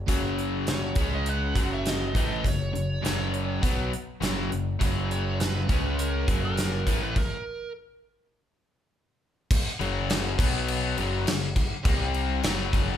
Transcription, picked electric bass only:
0.07 0.93 F#1 medium
0.96 1.52 C#2 medium
1.55 2.11 F#1 medium
2.15 2.42 A1 medium
2.44 2.72 F#1 medium
2.73 3.01 F#1 medium
3.02 3.58 F#1 medium
3.63 3.90 B1 medium
4.21 4.49 F#1 medium
4.52 4.79 F#1 medium
4.80 5.65 F#1 medium
5.69 6.24 C#2 medium
6.27 6.82 F#1 medium
6.86 7.14 A1 medium
9.80 10.35 F#1 medium
10.38 10.93 B1 loud
10.98 11.25 F#1 loud
11.56 muted picked electric bass stroke soft
11.85 12.40 C2 medium
12.44 12.97 F#1 medium

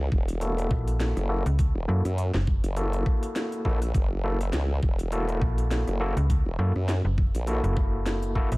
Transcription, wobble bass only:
0.12 0.69 E1 medium
1.16 1.43 F#1 loud
1.75 1.86 E1 loud
2.05 2.32 F#2 loud
2.64 3.04 F#1 loud
3.65 3.92 A#1 medium
3.94 4.51 F#1 medium
4.53 4.80 C#2 medium
4.83 5.39 E1 medium
5.87 6.14 F#1 medium
6.46 6.57 E1 medium
6.75 7.02 F#2 medium
7.35 7.61 A#1 medium

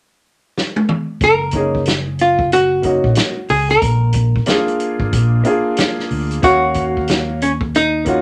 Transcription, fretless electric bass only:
1.21 3.00 F#1 loud
3.04 3.15 A#1 medium
3.50 3.78 C#2 medium
3.81 4.38 A#1 medium
4.99 5.11 G#1 medium
5.13 5.41 A#1 loud
6.11 6.39 D2 medium
6.43 8.22 D#2 loud

